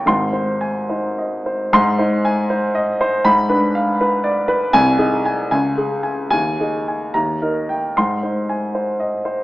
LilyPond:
<<
  \new Staff \with { instrumentName = "Grand piano" } { \time 6/8 \key aes \major \tempo 4. = 76 << { c'''4 r2 | c'''4 r2 | ces'''4 r2 | aes''4 r8 aes''4 r8 |
aes''4 r8 bes''4 r8 | c'''4 r2 | } \\ { r8 c''8 aes''8 c''8 ees''8 c''8 | r8 c''8 aes''8 c''8 ees''8 c''8 | r8 ces''8 f''8 ces''8 d''8 ces''8 | r8 aes'8 aes''8 r8 aes'8 aes''8 |
r8 aes'8 aes''8 r8 bes'8 g''8 | r8 c''8 aes''8 c''8 ees''8 c''8 | } >> }
  \new Staff \with { instrumentName = "Grand piano" } { \clef bass \time 6/8 \key aes \major <aes,, aes,>4. ees'4 r8 | aes,8 ees'4 r4. | aes,8 d'4 r4. | c,8 ees'4 des,4. |
ees,8 ees'4 ees,8 ees'4 | aes,8 ees'4 r4. | }
>>